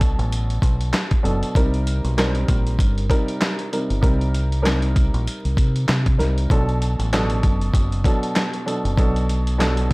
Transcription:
0.00 0.14 B1 loud
0.00 1.13 B2 medium
0.00 1.13 F#3 medium
0.00 1.13 D4 medium
0.00 1.14 A4 loud
0.00 kick loud
0.00 closed hi-hat medium
0.19 0.59 A1 medium
0.19 closed hi-hat medium
0.32 closed hi-hat loud
0.50 closed hi-hat soft
0.62 0.91 B1 medium
0.62 kick medium
0.62 closed hi-hat medium
0.81 closed hi-hat medium
0.93 snare loud
0.93 clap medium
0.93 closed hi-hat medium
1.11 kick medium
1.11 closed hi-hat medium
1.23 1.41 F#1 medium
1.23 1.53 B2 medium
1.23 1.53 F#3 medium
1.23 1.53 D4 medium
1.23 1.53 A4 medium
1.23 closed hi-hat medium
1.43 closed hi-hat medium
1.55 2.00 C2 loud
1.55 2.13 C3 medium
1.55 2.13 G3 medium
1.55 2.13 D#4 medium
1.55 2.13 A#4 loud
1.55 kick loud
1.55 closed hi-hat medium
1.74 closed hi-hat soft
1.87 closed hi-hat medium
2.04 2.45 B1 medium
2.04 closed hi-hat medium
2.17 3.04 G3 medium
2.17 3.04 C4 medium
2.17 3.04 D#4 medium
2.17 3.04 A#4 loud
2.17 snare loud
2.17 clap medium
2.17 closed hi-hat medium
2.35 closed hi-hat medium
2.48 2.77 A#1 medium
2.48 kick loud
2.48 closed hi-hat medium
2.67 closed hi-hat medium
2.79 3.08 G1 loud
2.79 kick medium
2.79 closed hi-hat medium
2.98 closed hi-hat medium
3.10 3.67 C3 medium
3.10 3.68 G3 medium
3.10 3.68 D#4 medium
3.10 3.68 A#4 loud
3.10 kick medium
3.10 closed hi-hat medium
3.28 closed hi-hat medium
3.41 snare loud
3.41 clap medium
3.41 closed hi-hat medium
3.59 closed hi-hat medium
3.72 4.00 C3 medium
3.72 4.00 G3 medium
3.72 4.00 D#4 medium
3.72 4.01 A#4 medium
3.72 closed hi-hat medium
3.90 4.02 G1 medium
3.90 closed hi-hat medium
4.01 5.09 C2 loud
4.01 4.60 C3 loud
4.01 4.60 G3 medium
4.01 4.60 D#4 medium
4.01 4.60 A#4 loud
4.01 kick loud
4.01 closed hi-hat medium
4.21 closed hi-hat soft
4.35 closed hi-hat medium
4.52 closed hi-hat medium
4.62 6.07 C3 medium
4.62 6.07 G3 medium
4.62 6.08 D#4 medium
4.62 6.08 A#4 loud
4.62 clap medium
4.62 closed hi-hat medium
4.67 snare loud
4.82 closed hi-hat medium
4.96 kick loud
4.96 closed hi-hat medium
5.14 5.26 A#1 medium
5.14 closed hi-hat medium
5.27 closed hi-hat loud
5.45 5.57 C2 medium
5.45 closed hi-hat medium
5.57 5.86 C3 medium
5.57 kick medium
5.57 closed hi-hat medium
5.76 closed hi-hat medium
5.88 6.17 C3 medium
5.88 snare loud
5.88 clap medium
5.88 closed hi-hat medium
6.06 kick medium
6.06 closed hi-hat medium
6.18 6.48 C2 medium
6.18 6.47 C3 medium
6.18 6.48 G3 medium
6.18 6.48 D#4 medium
6.18 6.48 A#4 medium
6.18 snare soft
6.18 closed hi-hat medium
6.38 closed hi-hat medium
6.50 6.95 B1 loud
6.50 7.08 B2 medium
6.50 7.08 F#3 medium
6.50 7.08 D4 medium
6.50 7.08 A4 loud
6.50 kick loud
6.50 closed hi-hat medium
6.69 closed hi-hat soft
6.82 closed hi-hat medium
6.99 7.40 A1 medium
6.99 closed hi-hat medium
7.13 7.99 B2 loud
7.13 7.99 F#3 medium
7.13 7.99 D4 medium
7.13 7.99 A4 loud
7.13 snare loud
7.13 clap medium
7.13 closed hi-hat medium
7.30 closed hi-hat medium
7.43 7.72 F#1 medium
7.43 kick loud
7.43 closed hi-hat medium
7.61 closed hi-hat medium
7.74 8.02 F#1 medium
7.74 kick medium
7.74 closed hi-hat medium
7.92 closed hi-hat medium
8.04 8.62 B2 medium
8.04 8.62 F#3 medium
8.04 8.63 D4 medium
8.04 8.63 A4 medium
8.04 kick medium
8.04 closed hi-hat medium
8.23 closed hi-hat medium
8.36 snare loud
8.36 clap medium
8.36 closed hi-hat medium
8.54 closed hi-hat medium
8.66 8.95 B2 medium
8.66 8.95 F#3 medium
8.66 8.95 D4 medium
8.66 8.96 A4 medium
8.66 closed hi-hat medium
8.85 8.97 F#1 medium
8.85 closed hi-hat medium
8.97 9.93 B1 loud
8.97 9.55 B2 medium
8.97 9.56 F#3 medium
8.97 9.56 D4 medium
8.97 9.56 A4 loud
8.97 kick loud
8.97 closed hi-hat medium
9.16 closed hi-hat soft
9.29 closed hi-hat medium
9.47 closed hi-hat medium
9.58 9.93 B2 medium
9.58 9.93 F#3 medium
9.58 9.93 D4 medium
9.58 9.93 A4 loud
9.58 snare loud
9.58 clap medium
9.58 closed hi-hat medium
9.77 closed hi-hat medium

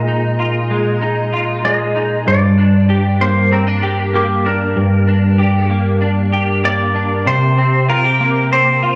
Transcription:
0.00 2.26 A#2 medium
0.00 0.69 G#3 medium
0.00 0.39 F4 medium
0.00 1.64 D#5 medium
0.08 1.00 D#4 medium
0.39 1.32 F4 medium
0.70 1.63 G#3 medium
1.01 1.94 D#4 medium
1.33 2.88 F4 medium
1.64 2.33 G#3 medium
1.64 2.27 D#5 medium
1.95 2.32 D#4 medium
2.27 4.75 G2 medium
2.27 3.21 D5 medium
2.58 3.51 D4 medium
2.89 3.82 G4 medium
3.20 4.13 A#3 medium
3.20 3.52 C5 medium
3.51 3.67 C4 medium
3.51 4.16 A#4 medium
3.67 4.44 D4 soft
3.82 5.38 G4 medium
4.13 5.69 A#3 medium
4.13 4.47 G4 medium
4.45 5.06 D4 medium
4.45 5.67 A#4 medium
4.76 7.26 G2 medium
5.07 6.00 D4 medium
5.38 6.32 G4 medium
5.70 6.63 A#3 medium
6.01 6.94 D4 medium
6.32 7.88 G4 medium
6.63 7.60 A#3 medium
6.63 7.27 D5 medium
6.95 7.32 D4 medium
7.26 8.95 C3 medium
7.26 7.89 C5 medium
7.57 8.51 C4 medium
7.89 8.04 F4 medium
7.89 8.52 A#4 medium
8.04 8.82 G4 medium
8.20 8.95 A#3 medium
8.51 8.95 C4 medium
8.51 8.95 C5 medium
8.83 8.95 F4 medium

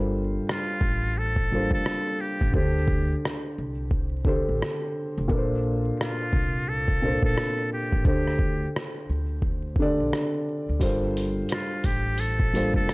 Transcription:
0.00 0.37 G1 loud
0.00 0.94 G3 medium
0.00 0.94 D4 medium
0.00 0.94 F4 medium
0.00 0.95 A4 medium
0.00 0.95 A#4 medium
0.00 0.95 C5 medium
0.49 1.20 F4 medium
0.49 cross-stick loud
0.81 1.68 A1 medium
0.81 kick medium
1.18 1.73 A4 loud
1.36 kick medium
1.52 2.41 G3 medium
1.52 2.42 A#3 medium
1.52 2.41 D4 medium
1.52 2.41 F4 medium
1.52 2.41 A4 medium
1.52 2.42 C5 medium
1.71 1.83 F1 medium
1.71 2.22 A4 loud
1.71 kick medium
1.86 cross-stick loud
2.21 2.54 G4 medium
2.41 2.54 A1 medium
2.41 kick medium
2.52 3.13 D2 loud
2.52 3.70 D3 medium
2.52 3.70 D4 medium
2.52 3.70 G4 medium
2.52 3.19 G4 medium
2.52 3.71 A4 medium
2.52 3.71 C5 medium
2.52 kick loud
2.88 kick loud
3.25 cross-stick loud
3.58 4.44 C2 medium
3.91 kick medium
4.25 5.15 D3 medium
4.25 5.16 D4 medium
4.25 5.16 G4 medium
4.25 5.16 A4 medium
4.25 5.17 C5 medium
4.25 kick medium
4.49 4.59 A1 medium
4.62 cross-stick loud
5.18 5.28 F1 loud
5.28 5.89 A#1 loud
5.28 6.46 A#2 medium
5.28 6.46 A#3 medium
5.28 6.46 D4 medium
5.28 6.47 A4 medium
5.28 5.38 B4 medium
5.28 kick loud
5.38 6.50 C5 medium
6.00 6.70 F4 loud
6.00 cross-stick loud
6.33 7.19 C2 medium
6.33 kick medium
6.69 7.24 A4 loud
6.88 kick medium
7.02 7.92 A#2 medium
7.02 7.92 A#3 medium
7.02 7.92 D4 medium
7.02 7.93 A4 medium
7.02 7.93 C5 medium
7.23 7.34 A#1 medium
7.23 7.68 A4 loud
7.23 kick medium
7.38 cross-stick loud
7.73 8.04 G4 medium
7.92 8.04 A1 medium
7.92 kick medium
8.04 8.65 D2 loud
8.04 9.21 D3 medium
8.04 9.22 D4 medium
8.04 9.22 G4 medium
8.04 8.71 G4 medium
8.04 9.23 A4 medium
8.04 9.23 C5 medium
8.04 kick loud
8.27 cross-stick soft
8.39 kick loud
8.76 cross-stick loud
9.09 9.95 D2 medium
9.42 kick medium
9.76 10.68 D3 medium
9.76 10.68 D4 medium
9.76 kick medium
9.80 10.69 G4 medium
9.80 10.69 A4 medium
9.80 10.69 D5 loud
10.00 10.11 A#1 medium
10.13 cross-stick loud
10.69 10.80 D2 medium
10.80 11.40 G1 loud
10.80 11.97 G3 medium
10.80 11.97 D4 medium
10.80 11.98 F4 medium
10.80 11.98 A4 medium
10.80 11.98 A#4 medium
10.80 11.99 C5 medium
10.80 kick loud
10.80 closed hi-hat medium
11.17 closed hi-hat medium
11.49 11.87 F4 medium
11.49 cross-stick loud
11.49 closed hi-hat medium
11.84 12.71 A1 medium
11.84 12.21 G4 medium
11.84 kick medium
11.84 closed hi-hat medium
12.18 12.75 A4 loud
12.18 closed hi-hat medium
12.40 kick medium
12.53 12.94 G3 medium
12.53 12.94 A#3 medium
12.53 12.94 D4 medium
12.53 12.94 F4 medium
12.53 12.94 A4 medium
12.53 12.94 C5 medium
12.53 closed hi-hat medium
12.74 12.86 F1 medium
12.74 12.94 A4 loud
12.74 kick medium
12.89 cross-stick loud
12.89 closed hi-hat medium

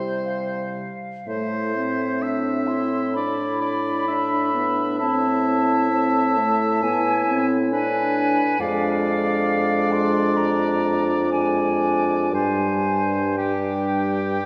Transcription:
0.00 0.94 C3 soft
0.00 0.93 G3 soft
0.00 0.94 E4 soft
0.00 0.93 C5 soft
0.25 1.28 F5 soft
1.27 6.78 A2 soft
1.27 1.77 A3 soft
1.27 2.24 E4 soft
1.27 2.24 C5 soft
1.27 2.68 E5 soft
1.75 3.18 C4 soft
2.22 2.70 D4 soft
2.22 3.15 E5 soft
2.67 3.14 E4 soft
2.67 3.12 C6 soft
3.13 4.08 D4 soft
3.13 4.11 E4 soft
3.13 3.61 D5 soft
3.13 4.96 B5 soft
3.61 4.07 D5 soft
4.08 4.54 D4 soft
4.08 5.02 D4 soft
4.08 4.99 E5 soft
4.55 5.02 B3 soft
4.99 5.92 C4 soft
4.99 6.82 E4 soft
4.99 7.56 E5 soft
4.99 6.84 A5 medium
5.92 6.39 C4 soft
6.37 6.84 A3 soft
6.83 8.43 A2 soft
6.83 7.27 B3 soft
6.83 7.75 E4 soft
6.83 7.45 G#5 medium
7.28 7.74 C4 soft
7.73 8.59 D4 soft
7.73 8.43 D4 soft
7.73 8.58 B4 soft
7.73 8.61 G#5 medium
8.60 12.34 F2 soft
8.60 11.14 G#3 soft
8.60 11.28 D4 soft
8.60 11.28 D5 soft
8.60 9.93 F5 medium
9.92 10.38 C6 medium
10.37 11.30 A#5 medium
11.31 12.33 G#3 soft
11.31 12.31 D4 soft
11.31 12.31 D5 soft
11.31 12.31 G#5 medium
12.31 14.46 G2 soft
12.31 13.36 G3 soft
12.31 13.36 D4 soft
12.31 13.36 C5 soft
12.31 13.38 G#5 soft
13.37 14.41 G3 soft
13.37 14.42 D4 soft
13.37 14.46 G4 soft
13.37 14.46 G5 soft
14.42 14.46 G3 soft

